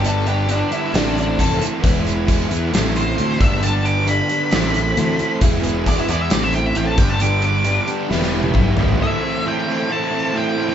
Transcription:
<<
  \new Staff \with { instrumentName = "Lead electric guitar" } { \time 4/4 \key a \minor \tempo 4 = 134 a'8 g'8 d'8 e'8 d'8 d'8 a'8 r8 | r2 r8 c''4 e''8 | a''8 d'''8 b''2. | r4 d''16 e'16 d''16 e''16 d''16 e''16 g''16 e''16 g''16 a''16 g''16 a''16 |
d'''8 d'''4 r2 r8 | e''4 g''4 a''4 g''8. g''16 | }
  \new Staff \with { instrumentName = "Tonewheel organ" } { \time 4/4 \key a \minor r1 | <e' gis' b'>2 <e' a' c''>4. <d' g' b'>8~ | <d' g' b'>2 <e' a' c''>2 | <e' gis' b'>2 <e' a' c''>4. <d' g' b'>8~ |
<d' g' b'>2 <e' g' b'>2 | <e' a' c''>1 | }
  \new Staff \with { instrumentName = "Steel-string acoustic guitar" } { \time 4/4 \key a \minor <g d' g' b'>8 <g d' g' b'>16 <d' g'>16 <g d' g' b'>16 <g' b'>16 <g d' g' b'>8 <a, e a c' a'>16 <a c' e' a'>16 <a c' a'>16 <a c' e' a'>16 <a, e a c' e' a'>8 <a c' e' a'>8 | <e b e' gis' b'>8 <b e' gis' b'>16 <e' gis' b'>16 <e b e' gis' b'>8 <b e' gis' b'>8 <a, e a c' e' c''>16 <a c' e' c''>16 <a c' e'>16 <a c' e' c''>16 <a, e a c' e' c''>8 <g d' g' b'>8 | <g d' g' b'>8 <g d' g' b'>16 <d' g' b'>16 <g d' g' b'>16 <d' g'>16 <g d' g' b'>8 <a, e a c' e' c''>16 <c' e' c''>16 <a c' e' c''>16 <a c' e' c''>16 <a, e a c' e' c''>8 <a c' e' c''>8 | <e b e' gis' b'>8 <b e' gis' b'>16 <e' gis' b'>16 <e b e' gis' b'>16 <e' gis' b'>16 <b e' gis' b'>8 <a, e a c' e' c''>16 <a c' e' c''>16 <a c' e' c''>16 <a c' e' c''>16 <a, e a c' e' c''>8 <g d' g' b'>8 |
<g d' g' b'>8 <g d' g'>16 <d' g' b'>16 <g d' g' b'>16 <d' g' b'>16 <g d' g' b'>8 <e g e' g' b'>16 <e' g' b'>16 <g e' g' b'>16 <e' g' b'>16 <e g e' g' b'>8 <g e' g' b'>8 | r1 | }
  \new Staff \with { instrumentName = "Overdriven electric guitar" } { \time 4/4 \key a \minor <g, d g b d'>8 <g b d'>8 <d g b d'>8 <g b d'>8 <a, e a c' e'>4 <e a c' e'>8 <a c' e'>8 | <e gis b e'>8 <gis b e'>8 <e gis b e'>8 <gis b e'>8 <a, e a c' e'>4 <e a c' e'>8 <g, d g b d'>8 | <g, d g b d'>8 <g b d'>8 <d g b d'>8 <g b d'>8 <a, e a c' e'>4 <e a c' e'>8 <a c' e'>8 | <e gis b e'>8 <gis b e'>8 <e gis b e'>8 <gis b e'>8 <a, e a c' e'>4 <e a c' e'>8 <g, d g b d'>8 |
<g, d g b d'>8 <g b d'>8 <d g b d'>8 <g b d'>8 <e g b e'>4 <e g b e'>8 <g b e'>8 | <a, e a c' e'>8 <a c' e'>8 <e a c' e'>8 <a, e a c' e'>8 <e a c' e'>8 <a c' e'>8 <a, e a c' e'>8 <a c' e'>8 | }
  \new Staff \with { instrumentName = "Fingered electric bass" } { \clef bass \time 4/4 \key a \minor g,,4. r8 a,,4 f,,8 r8 | e,,4. e,8 a,,4 d,8 g,,8~ | g,,4. r8 a,,4 d,8 r8 | e,,4. e,8 a,,4 a,,8 g,,8~ |
g,,4. r8 e,,4 b,,8 a,,8 | r1 | }
  \new DrumStaff \with { instrumentName = "Drums" } \drummode { \time 4/4 hh8 hh8 hh8 hh8 <hh sn>8 hh8 <hh bd>8 hh8 | <hh bd>8 hh8 <hh bd>8 hh8 <hh sn>8 hh8 hh8 <hh bd>8 | hh8 hh8 hh8 hh8 <hh sn>8 hh8 hh8 hh8 | <hh bd>8 hh8 <hh bd>8 hh8 <hh sn>8 hh8 hh8 <hh bd>8 |
hh8 hh8 hh8 hh8 sn16 sn8 tommh16 <bd toml>8 tomfh16 tomfh16 | r4 r4 r4 r4 | }
>>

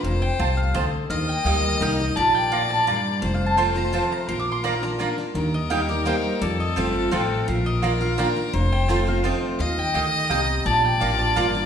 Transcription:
<<
  \new Staff \with { instrumentName = "Mandolin" } { \time 3/4 \key bes \major \tempo 4 = 170 r8 g''4 f''8 ees''4 | f''8 g''8 r4 bes''4 | a''8 g''4 a''8 bes''8 r8 | \tuplet 3/2 { r8 f''8 a''8 } c'''8 bes''8 a''8 bes''8 |
\tuplet 3/2 { c'''8 d'''8 c'''8 } bes''8 bes''4~ bes''16 r16 | r8 ees''4 d''8 c''4 | d''8 ees''8 r4 g''4 | f''8 ees''4 f''8 g''8 r8 |
r8 g''4 f''8 ees''4 | f''8 g''8 r4 bes''4 | a''8 g''4 a''8 bes''8 r8 | }
  \new Staff \with { instrumentName = "Fiddle" } { \time 3/4 \key bes \major c''2~ c''8 r8 | ees''2. | d''2. | c''2. |
bes'2~ bes'8 r8 | bes'2. | a'2. | bes'2. |
c''2~ c''8 r8 | ees''2. | d''2. | }
  \new Staff \with { instrumentName = "Mandolin" } { \time 3/4 \key bes \major r4 <c' f' c'' a''>16 r8. <c' f' c'' a''>16 r8. | r4 <bes g' ees'' g''>16 r8. <bes g' ees'' g''>16 r8. | r4 <bes f' d'' bes''>16 r8. <bes f' d'' bes''>16 r8. | r4 <c' f' c'' a''>16 r8. <c' f' c'' a''>16 r8. |
r4 <bes f' d'' bes''>16 r8. <bes f' d'' bes''>16 r8. | r4 <bes g' ees'' g''>16 r8. <bes g' ees'' g''>16 r8. | r4 <c' f' c'' a''>16 r8. <c' f' c'' a''>16 r8. | r4 <bes f' d'' bes''>16 r8. <bes f' d'' bes''>16 r8. |
r4 <c' f' c'' a''>16 r8. <c' f' c'' a''>16 r8. | r4 <bes g' ees'' g''>16 r8. <bes g' ees'' g''>16 r8. | r4 <bes f' d'' bes''>16 r8. <bes f' d'' bes''>16 r8. | }
  \new Staff \with { instrumentName = "Steel-string acoustic guitar" } { \time 3/4 \key bes \major << { r2. | r4 <g bes ees' g'>4 <g bes ees' g'>8 <ees' g'>8 | r2. | r4 <f a c' f'>8 <c' f'>8 <f a c' f'>4 |
r4 <f bes d' f'>8 <d' f'>8 <f bes d' f'>8 <d' f'>8 | r4 <g bes ees' g'>8 <ees' g'>8 <g bes ees' g'>4 | r4 <f a c' f'>4 <f a c' f'>4 | r4 <f bes d' f'>8 <d' f'>8 <f bes d' f'>8 <d' f'>8 |
r4 <f a c' f'>8 <c' f'>8 <f a c' f'>4 | r2. | r4 <f bes d' f'>4 <f bes d' f'>8 <d' f'>8 | } \\ { f,4 c4 d4 | ees2 r4 | bes,4 a,4 g,4 | f,2 r4 |
bes,2 r4 | ees2 r4 | f,2 r4 | bes,2 r4 |
f,2 r4 | ees4 d4 c4 | bes,2 r4 | } >> }
  \new Staff \with { instrumentName = "Upright bass" } { \clef bass \time 3/4 \key bes \major f,,4 c,4 d,4 | ees,4 d,4 c,4 | bes,,2. | f,,2. |
bes,,2. | ees,2. | f,4 g,,4 a,,4 | bes,,2. |
f,,2. | ees,4 d,4 c,4 | bes,,4 a,,4 g,,4 | }
>>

